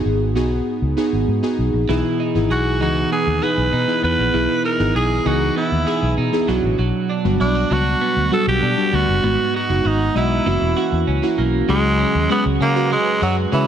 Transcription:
Already playing: G#2 B3 D#4 F#4 G#4
0.05 G#1
0.35 B1 B3 D#4 F#4 G#4
0.82 C#2
0.97 B3 D#4 F#4 G#4
1.13 G#1
1.28 G#2
1.43 B3 D#4 F#4 G#4
1.58 B1
1.74 A#1
1.89 B1 B2 E3 B3 D#4 E4 G#4
2.20 D#4
2.35 G#1 B3 D#4 E4 G#4
2.50 B1 F#4 G#4
2.80 C#2 E3 B3 D#4 F#4 G#4
3.11 B3 G#4
3.27 D#2
3.42 B3 D#4 E4 G#4 B4
3.57 B1
3.73 B2 D#4
3.87 B3 D#4 E4 G#4
4.03 E2 B3 B4
4.19 A#1
4.33 B1 B2 E3 B3 D#4 E4 G#4
4.64 D#4 A#4
4.79 G#1 B3 D#4 E4 G#4
4.95 B1 G#4
5.25 C#2 E3 B3 D#4 F#4 G#4
5.56 B3 E4
5.72 D#2
5.86 B3 D#4 E4 G#4
6.02 B1
6.17 B2 D#4
6.32 B3 D#4 E4 G#4
6.48 B1 B2 F#3 B3 D4 F#4
6.63 A1
6.79 B1 F#3
7.09 D4
7.24 G1 G3 B3 D4 F#4
7.40 B1 D4 E4
7.55 F#4
7.70 C#2 F#3 B3 D4 F#4
8.01 B3
8.16 D2
8.31 G3 B3 D4 F#4 A4
8.47 B1 G4
8.62 B2 D4
8.77 G3 B3 D4 F#4
8.93 D2 B3 F#4
9.08 F#1
9.23 G#1 G#2 G#3 B3 D#4 F#4
9.54 D#4 F#4
9.69 F#1 G#3 B3 D#4 F#4
9.85 G#1 D#4 F#4
10.15 B1 G#3 B3 D#4 E4 F#4 D#5
10.46 F#1 E3 A#3 C#4 E4 F#4
10.61 E1
10.76 A#3 C#4 E4 F#4
10.92 E2
11.07 C#2 C#4
11.22 A#3 C#4 E4 F#4
11.38 B1 A#3
11.68 C#2 C#3 F#3 G#3 C#4 F#4 G#4
11.99 C#4
12.15 D#2
12.29 G#3 B3 C#4 F#4 G#4
12.45 C#2
12.60 C#3 A#3 C#4
12.75 G#3 C#4 F#4 B4
12.91 G#3
13.21 F#2 F#3 G#3 C#4 F#4 G#4
13.52 C#3 E3 G#3 C#4 F#4 G#4

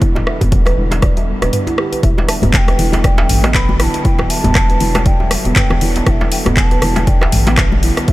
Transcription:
Already playing: D3 G3 B3
0.01 E4, kick, closed hi-hat
0.15 D1, djembe slap, djembe tone
0.27 E5, cross-stick
0.41 E1 B3, kick, closed hi-hat, mid tom, djembe tone, djembe bass
0.52 kick, closed hi-hat
0.66 B4, cross-stick, closed hi-hat, djembe tone
0.77 E1 E4
0.91 closed hi-hat, djembe slap, djembe tone
1.02 D5, kick, cross-stick, closed hi-hat, djembe bass
1.17 E1 E5, closed hi-hat, djembe tone
1.42 E1 B4, cross-stick, closed hi-hat, djembe tone
1.53 B4, closed hi-hat, mid tom
1.67 E4, closed hi-hat, djembe tone
1.78 G4, cross-stick
1.92 B4, closed hi-hat, djembe tone
2.03 E1 F#3 E4 E5, kick, closed hi-hat
2.18 muted conga, djembe slap, djembe tone
2.28 E5 A5, cross-stick, open hi-hat
2.42 E1 B3, closed hi-hat, mid tom, high conga, djembe tone, djembe bass
2.53 A5, kick, clap, closed hi-hat, muted conga
2.57 G5
2.68 B4, cross-stick, closed hi-hat, djembe tone
2.79 E1 E4, open hi-hat, low conga
2.92 closed hi-hat, djembe slap, muted conga, djembe tone, high conga
3.04 D5 G5, kick, cross-stick, closed hi-hat
3.18 E5, djembe slap, djembe tone
3.29 A1, mid tom, open hi-hat, muted conga, high conga
3.43 B3, cross-stick, closed hi-hat, djembe slap, high conga, djembe tone
3.54 B4 B5, kick, clap, closed hi-hat
3.69 muted conga, high conga, djembe tone
3.80 E4 A5 B5, cross-stick, open hi-hat
3.94 B3, closed hi-hat, djembe tone
4.05 E4 G5, kick, closed hi-hat
4.19 D1, cross-stick, djembe slap, muted conga, djembe tone
4.30 E5 A5, open hi-hat
4.44 E1 B3, closed hi-hat, mid tom, high conga, djembe tone, djembe bass
4.55 kick, cross-stick, clap, closed hi-hat, muted conga
4.69 B4, closed hi-hat, djembe tone
4.80 E1 E4, open hi-hat, high conga, low conga
4.94 cross-stick, closed hi-hat, muted conga, djembe slap, djembe tone, high conga
5.06 D5 G5, kick, closed hi-hat, djembe bass
5.20 E1 E5, djembe tone
5.31 G5, cross-stick, open hi-hat, muted conga
5.35 E5
5.45 E1 B3, closed hi-hat, djembe tone
5.56 B4 G5, kick, clap, closed hi-hat, mid tom
5.70 E1, cross-stick, muted conga, djembe tone, low conga
5.81 E4, open hi-hat, low conga
5.96 B3, closed hi-hat, djembe tone
6.06 E1 E4 G5, kick, cross-stick, closed hi-hat
6.11 E5
6.21 djembe slap, muted conga, djembe tone
6.32 E5 G5, open hi-hat
6.46 E1 B3, cross-stick, closed hi-hat, mid tom, high conga, djembe tone, djembe bass
6.57 A5, kick, clap, closed hi-hat, muted conga
6.71 B4, closed hi-hat, djembe tone
6.82 E1 E4, cross-stick, open hi-hat, low conga
6.96 closed hi-hat, djembe slap, muted conga, djembe tone, high conga
7.07 D5 G5, kick, closed hi-hat
7.21 E5, cross-stick, djembe slap, djembe tone
7.32 A1, mid tom, open hi-hat, muted conga, high conga
7.47 B3, closed hi-hat, djembe slap, djembe tone, high conga
7.58 B4, kick, cross-stick, clap, closed hi-hat
7.72 muted conga, djembe tone, high conga
7.83 E4, open hi-hat
7.97 B3, cross-stick, closed hi-hat, djembe tone
8.08 E4 E5, kick, closed hi-hat

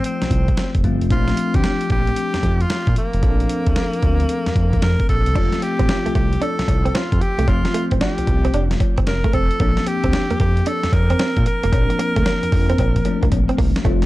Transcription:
Already playing: F3 A3 C4 F4
0.04 C4, closed hi-hat
0.22 C2, snare, closed hi-hat
0.31 C2, kick, closed hi-hat
0.48 kick, closed hi-hat
0.57 snare, closed hi-hat
0.75 F1, kick, closed hi-hat
0.84 G1 F3 A3 C4 F4, kick, closed hi-hat
1.01 F1, closed hi-hat
1.10 A#1 F3 A3 C4 D4 F4, kick, closed hi-hat
1.28 snare, closed hi-hat
1.37 closed hi-hat
1.54 D2 G4, kick, closed hi-hat
1.64 snare, closed hi-hat
1.81 closed hi-hat
1.90 A#1 G4, kick, closed hi-hat
2.07 closed hi-hat
2.16 closed hi-hat
2.34 F2, snare, closed hi-hat
2.43 F2, kick, closed hi-hat
2.60 F4, closed hi-hat
2.70 snare, closed hi-hat
2.87 A#2, kick, closed hi-hat
2.96 A#3, closed hi-hat
3.13 F1, closed hi-hat
3.22 A#1 F3 C4 D4 A4, kick, closed hi-hat
3.40 closed hi-hat
3.49 closed hi-hat
3.66 D2, kick, closed hi-hat
3.76 snare, closed hi-hat
3.93 closed hi-hat
4.03 D2, kick, closed hi-hat
4.20 closed hi-hat
4.29 closed hi-hat
4.46 F2, snare, closed hi-hat
4.56 F2, kick, closed hi-hat
4.73 kick, closed hi-hat
4.82 F2 A#4, snare, closed hi-hat
5.00 kick, closed hi-hat
5.09 A#1 A4, kick, closed hi-hat
5.26 C2, closed hi-hat
5.34 F1 F3 G#3 C4 D4 F4, kick, closed hi-hat, crash, cowbell
5.42 A3
5.52 snare, closed hi-hat
5.62 G4, muted clean electric guitar stroke, closed hi-hat
5.79 A1 C4, kick, closed hi-hat
5.89 muted clean electric guitar stroke, snare, closed hi-hat, cowbell
6.06 C2 A3, closed hi-hat
6.15 C2 A3 G4, kick, closed hi-hat
6.33 closed hi-hat
6.42 D4 A4, closed hi-hat, cowbell
6.59 C2, muted clean electric guitar stroke, snare, closed hi-hat
6.68 C2, kick, closed hi-hat, cowbell
6.85 C4, closed hi-hat
6.95 C4 F4, snare, closed hi-hat, cowbell
7.12 F2, kick, closed hi-hat
7.21 G4, muted clean electric guitar stroke, closed hi-hat
7.38 C2 A3, closed hi-hat
7.47 F1 F3 A3 C4 F4, kick, closed hi-hat, cowbell
7.65 muted clean electric guitar stroke, snare, closed hi-hat
7.74 A3, closed hi-hat
7.91 A1 C4, kick, closed hi-hat
8.01 D4 G4, snare, closed hi-hat, cowbell
8.18 C2, muted clean electric guitar stroke, closed hi-hat
8.27 C2, kick, closed hi-hat
8.45 C4, closed hi-hat
8.54 F1 D4, closed hi-hat, cowbell
8.71 snare, closed hi-hat
8.80 muted clean electric guitar stroke, kick, closed hi-hat, cowbell
8.98 G1 C4, kick, closed hi-hat
9.07 F1 A#4, muted clean electric guitar stroke, snare, closed hi-hat, cowbell
9.24 A3, kick, closed hi-hat
9.33 F1 C4 A4, kick, closed hi-hat
9.51 closed hi-hat
9.59 A#1 F3 A#3 C4 D4, kick, closed hi-hat, cowbell
9.77 snare, closed hi-hat
9.86 G4, muted clean electric guitar stroke, closed hi-hat
10.04 D2 C4, kick, closed hi-hat
10.13 muted clean electric guitar stroke, snare, closed hi-hat, cowbell
10.30 F2 A#3, closed hi-hat
10.40 F2 A#3 G4, kick, closed hi-hat
10.57 closed hi-hat
10.66 D4 A4, closed hi-hat, cowbell
10.83 F2, muted clean electric guitar stroke, snare, closed hi-hat
10.93 F2 A#4, kick, closed hi-hat, cowbell
11.10 C4, closed hi-hat
11.19 C4, snare, closed hi-hat, cowbell
11.37 A#2, kick, closed hi-hat
11.46 A#4, muted clean electric guitar stroke, closed hi-hat
11.63 F1 A#3, closed hi-hat
11.72 A#1 F3 A#3 C4 D4, kick, closed hi-hat, cowbell
11.90 muted clean electric guitar stroke, closed hi-hat
11.99 A#3, closed hi-hat
12.16 D2 A3, kick, closed hi-hat
12.26 A#3, snare, closed hi-hat, cowbell
12.43 F2, muted clean electric guitar stroke, closed hi-hat
12.52 F2, kick, open hi-hat
12.70 C4, closed hi-hat
12.78 A#1 C4, kick, closed hi-hat, cowbell
12.96 kick, closed hi-hat
13.05 F3 A3 C4 D4, muted clean electric guitar stroke, closed hi-hat, cowbell
13.23 C2 A#3, kick, closed hi-hat
13.32 A#1, muted clean electric guitar stroke, kick, closed hi-hat, cowbell
13.49 C4, closed hi-hat
13.58 C2 A#3, kick, open hi-hat
13.76 snare, closed hi-hat
13.84 F1 F3 G3 A3 C4 F4, kick, closed hi-hat, cowbell
13.91 A3
14.02 snare, closed hi-hat

